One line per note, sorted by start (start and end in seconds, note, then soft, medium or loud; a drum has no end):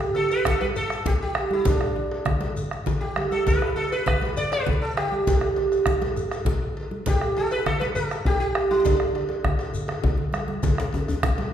0.00 0.16 G4 medium
0.00 bombo rim medium
0.15 0.31 A4 medium
0.15 cowbell soft
0.15 djembe tone medium
0.15 high conga soft
0.30 0.45 B4 medium
0.30 bombo rim soft
0.30 cowbell soft
0.30 shekere soft
0.45 0.60 A4 medium
0.45 bombo rim loud
0.45 bombo low medium
0.45 djembe slap medium
0.45 djembe bass medium
0.45 low conga medium
0.60 0.66 B4 medium
0.60 bombo rim soft
0.60 cowbell medium
0.60 high conga medium
0.60 djembe tone medium
0.76 1.04 A4 loud
0.76 bombo rim soft
0.76 shekere medium
0.90 bombo rim medium
0.90 cowbell soft
0.90 shekere soft
1.05 1.12 G4 medium
1.05 bombo low loud
1.05 cowbell medium
1.05 djembe slap medium
1.05 djembe tone medium
1.05 high conga soft
1.05 djembe bass medium
1.05 low conga medium
1.22 1.53 G4 medium
1.35 bombo rim loud
1.35 cowbell soft
1.51 1.68 E4 medium
1.51 djembe slap soft
1.51 high conga medium
1.51 djembe tone soft
1.65 2.54 D4 medium
1.65 bombo low loud
1.65 cowbell medium
1.65 djembe slap medium
1.65 high conga soft
1.65 low conga medium
1.65 djembe bass medium
1.65 shekere medium
1.81 bombo rim medium
1.81 djembe slap soft
1.96 djembe tone medium
2.11 bombo rim soft
2.11 cowbell soft
2.25 bombo rim medium
2.25 bombo low medium
2.25 djembe slap medium
2.25 high conga soft
2.25 low conga medium
2.25 djembe bass medium
2.40 bombo rim soft
2.40 cowbell soft
2.40 high conga medium
2.40 djembe tone medium
2.56 high conga soft
2.56 shekere medium
2.71 bombo rim medium
2.71 djembe slap soft
2.71 shekere soft
2.86 cowbell soft
2.86 djembe slap medium
2.86 djembe tone medium
2.86 low conga medium
2.86 djembe bass medium
2.86 shekere soft
3.01 3.32 G4 medium
3.01 bombo rim soft
3.01 low conga soft
3.16 bombo rim medium
3.16 cowbell soft
3.16 high conga medium
3.31 3.46 A4 medium
3.31 bombo rim soft
3.31 high conga medium
3.31 djembe tone medium
3.31 shekere soft
3.46 3.75 B4 medium
3.46 bombo low loud
3.46 cowbell medium
3.46 djembe slap medium
3.46 low conga medium
3.46 djembe bass medium
3.46 shekere medium
3.62 bombo rim medium
3.62 djembe slap soft
3.76 3.90 A4 medium
3.76 cowbell soft
3.76 djembe tone medium
3.76 high conga soft
3.92 4.06 B4 medium
3.92 bombo rim soft
3.92 cowbell soft
3.92 shekere soft
4.06 4.37 B4 medium
4.06 bombo rim medium
4.06 bombo low medium
4.06 djembe slap medium
4.06 low conga medium
4.06 djembe bass medium
4.22 bombo rim soft
4.22 cowbell medium
4.22 high conga medium
4.22 djembe tone medium
4.37 4.51 D5 loud
4.37 bombo rim soft
4.37 shekere medium
4.52 4.83 B4 loud
4.52 bombo rim medium
4.52 cowbell medium
4.52 shekere soft
4.66 bombo low loud
4.66 cowbell soft
4.66 djembe slap medium
4.66 high conga soft
4.66 djembe tone medium
4.66 low conga medium
4.82 4.96 A4 medium
4.97 5.25 G4 medium
4.97 bombo rim medium
4.97 cowbell soft
5.12 djembe slap soft
5.12 high conga soft
5.12 djembe tone soft
5.27 5.69 G4 medium
5.27 bombo low loud
5.27 cowbell medium
5.27 djembe slap medium
5.27 low conga medium
5.27 djembe bass medium
5.27 shekere medium
5.41 bombo rim medium
5.41 djembe slap soft
5.56 cowbell medium
5.56 djembe tone medium
5.56 high conga soft
5.72 bombo rim soft
5.72 cowbell soft
5.72 shekere soft
5.86 bombo rim loud
5.86 bombo low medium
5.86 djembe slap medium
5.86 low conga medium
5.86 djembe bass medium
6.01 bombo rim soft
6.01 cowbell medium
6.01 high conga medium
6.01 djembe tone medium
6.16 bombo rim soft
6.16 shekere medium
6.31 bombo rim medium
6.31 cowbell medium
6.31 shekere soft
6.45 bombo low loud
6.45 cowbell medium
6.45 djembe slap medium
6.45 high conga soft
6.45 djembe tone medium
6.45 low conga medium
6.45 djembe bass medium
6.77 cowbell soft
6.91 djembe slap soft
6.91 high conga soft
6.91 djembe tone medium
7.06 7.35 G4 medium
7.06 bombo low loud
7.06 cowbell medium
7.06 djembe slap medium
7.06 low conga medium
7.06 djembe bass medium
7.06 shekere medium
7.21 bombo rim medium
7.21 djembe slap soft
7.36 7.52 A4 medium
7.36 cowbell medium
7.36 high conga soft
7.36 djembe tone medium
7.51 7.66 B4 loud
7.51 bombo rim soft
7.51 cowbell medium
7.51 shekere soft
7.66 7.79 A4 loud
7.66 bombo rim medium
7.66 djembe slap medium
7.66 low conga medium
7.66 djembe bass medium
7.80 7.85 B4 medium
7.80 bombo rim soft
7.80 cowbell medium
7.80 djembe tone medium
7.80 high conga medium
7.95 8.26 A4 loud
7.95 bombo rim soft
7.95 shekere medium
8.11 bombo rim medium
8.11 cowbell soft
8.11 shekere soft
8.25 8.39 G4 loud
8.25 bombo low loud
8.25 cowbell medium
8.25 djembe slap medium
8.25 djembe tone medium
8.25 high conga soft
8.25 djembe bass medium
8.40 8.71 G4 medium
8.55 bombo rim medium
8.55 cowbell soft
8.71 8.84 E4 medium
8.71 djembe slap soft
8.71 djembe tone medium
8.71 high conga medium
8.85 9.70 D4 medium
8.85 bombo low loud
8.85 cowbell medium
8.85 djembe slap medium
8.85 low conga medium
8.85 djembe bass medium
8.85 shekere medium
9.00 bombo rim medium
9.00 high conga soft
9.15 cowbell soft
9.15 djembe tone medium
9.29 bombo rim soft
9.29 cowbell soft
9.29 high conga soft
9.44 bombo rim medium
9.44 bombo low loud
9.44 djembe slap medium
9.44 low conga medium
9.44 djembe bass medium
9.59 bombo rim soft
9.59 cowbell soft
9.59 djembe tone medium
9.59 shekere soft
9.74 shekere medium
9.88 bombo rim medium
9.88 cowbell medium
9.88 low conga soft
10.04 bombo low loud
10.04 cowbell soft
10.04 djembe slap medium
10.04 djembe tone medium
10.04 djembe bass medium
10.04 low conga soft
10.18 low conga medium
10.33 bombo rim medium
10.33 cowbell soft
10.33 high conga medium
10.33 shekere soft
10.48 bombo rim soft
10.48 djembe slap soft
10.48 high conga medium
10.48 djembe tone medium
10.63 bombo low loud
10.63 cowbell medium
10.63 djembe slap medium
10.63 djembe bass medium
10.63 low conga medium
10.63 shekere medium
10.78 bombo rim medium
10.78 djembe slap soft
10.78 djembe slap medium
10.93 cowbell soft
10.93 high conga soft
10.93 djembe tone medium
11.08 bombo rim soft
11.08 cowbell soft
11.08 djembe bass medium
11.08 shekere soft
11.23 bombo rim medium
11.23 bombo low loud
11.23 djembe slap medium
11.23 djembe tone medium
11.23 low conga medium
11.23 djembe bass medium
11.38 bombo rim soft
11.38 cowbell medium
11.38 djembe tone medium
11.38 high conga medium